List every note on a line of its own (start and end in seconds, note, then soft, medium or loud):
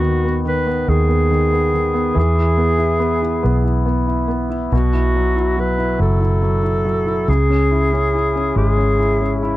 0.00 0.84 D#2 medium
0.00 0.02 D#3 medium
0.00 0.43 D#3 soft
0.00 0.23 B3 soft
0.00 0.43 F#4 medium
0.25 0.65 B3 soft
0.45 0.86 D#3 soft
0.45 0.91 B4 medium
0.67 1.07 B3 soft
0.88 2.12 D#2 medium
0.88 1.29 D#3 soft
0.88 2.17 G#4 medium
1.08 1.51 B3 soft
1.31 1.72 D#3 soft
1.52 1.93 B3 soft
1.74 2.15 D#3 soft
1.94 2.15 B3 soft
2.14 3.40 E2 medium
2.14 4.67 E3 medium
2.19 3.84 G#4 medium
2.35 2.77 E4 soft
2.57 2.98 B3 soft
2.78 3.20 E4 soft
3.00 3.42 B3 soft
3.22 3.63 E4 soft
3.43 4.68 B1 medium
3.43 3.84 B3 soft
3.64 4.05 E4 soft
3.86 4.27 B3 soft
4.07 4.48 E4 soft
4.28 4.70 B3 soft
4.50 4.71 E4 soft
4.72 5.96 B1 medium
4.72 7.24 B2 medium
4.72 5.61 F#4 medium
4.93 5.34 E4 soft
5.15 5.56 F#3 soft
5.36 5.77 E4 soft
5.57 5.97 F#3 soft
5.57 6.01 B4 medium
5.78 6.19 E4 soft
5.99 7.24 F#1 medium
5.99 6.41 F#3 soft
5.99 7.31 A4 medium
6.20 6.62 E4 soft
6.42 6.84 F#3 soft
6.63 7.05 E4 soft
6.85 7.27 F#3 soft
7.06 7.27 E4 soft
7.28 8.52 C#2 medium
7.28 9.57 C#3 medium
7.28 8.57 G#4 medium
7.50 7.91 C#4 soft
7.71 8.13 E4 soft
7.93 8.34 C#4 soft
8.14 8.97 E4 soft
8.36 8.76 C#4 soft
8.56 9.57 G#1 medium
8.56 9.57 G#3 soft
8.56 9.53 G#4 medium
8.78 9.20 C#4 soft
8.99 9.41 E4 soft
9.21 9.57 C#4 soft
9.43 9.57 E4 soft